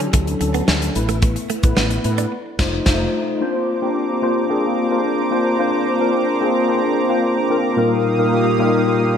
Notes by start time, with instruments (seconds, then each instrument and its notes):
Already playing: tine electric piano F#3 C#4 D4 E4 G4 A4
0.00 clean electric guitar C#4, closed hi-hat
0.13 fretless electric bass D2, clean electric guitar A3, kick, closed hi-hat
0.27 closed hi-hat
0.40 fretless electric bass D2, tine electric piano F#3 C#4 D4 A4, muted clean electric guitar stroke, closed hi-hat
0.54 clean electric guitar B3, closed hi-hat
0.68 fretless electric bass D2, clean electric guitar C#4, snare
0.82 muted clean electric guitar stroke, closed hi-hat
0.95 fretless electric bass A1, tine electric piano A3 B3 E4 B4, closed hi-hat
1.09 clean electric guitar A3, closed hi-hat
1.22 clean electric guitar A3, kick, closed hi-hat
1.36 muted clean electric guitar stroke, closed hi-hat
1.50 clean electric guitar A3, closed hi-hat
1.63 fretless electric bass A1, tine electric piano A3 B3 E4 B4, kick, closed hi-hat
1.77 fretless electric bass A1, clean electric guitar B3, snare
1.90 muted clean electric guitar stroke, closed hi-hat
2.04 fretless electric bass A2, tine electric piano A3 B3 E4 B4, closed hi-hat
2.18 clean electric guitar D4, closed hi-hat
2.59 fretless electric bass F1, tine electric piano D#4 F4 C5, kick, snare, crash
2.65 tine electric piano A3
2.86 fretless electric bass F1, tine electric piano D#4 F4 C5, kick, snare, crash
2.93 tine electric piano A3
3.41 tine electric piano A#3 C4 D4 F4 C5, analog synth pad C5 A#5 D6
3.82 tine electric piano A#3 C4 D4 F4 G4
4.22 tine electric piano A#3 C4 D4 F4 C5
4.49 tine electric piano A#3 C4 D4 F4 G#4
4.91 tine electric piano A#3 C4 D4 F4 C5
5.31 tine electric piano A#3 C4 D4 F4 C5
5.59 tine electric piano A#3 C4 D4 F4 C5
6.00 tine electric piano A#3 C4 D4 F4 A#4
6.41 tine electric piano A#3 C4 D4 F4 G#4
6.68 tine electric piano A#3 C4 D4 F4 C5
7.09 tine electric piano A#3 C4 D4 F4 C5
7.50 tine electric piano A#3 C4 D4 F4 A#4
7.76 tine electric piano A#2 G3 A#3 D#4 F4 A#4, analog synth pad A#3 G4 F5 D#6
8.18 tine electric piano A#2 G3 A#3 D#4 F4 A#4
8.58 tine electric piano A#2 G3 A#3 D#4 F4 A#4
9.00 tine electric piano A#4
9.13 tine electric piano D5